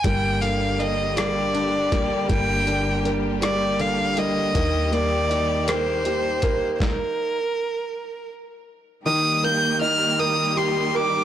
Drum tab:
HH |xxxxxx|xxxxxx|xxxxxx|------|
SD |---r--|---r--|---r--|o-----|
BD |o----o|o-----|o----o|o-----|

HH |------|
SD |------|
BD |------|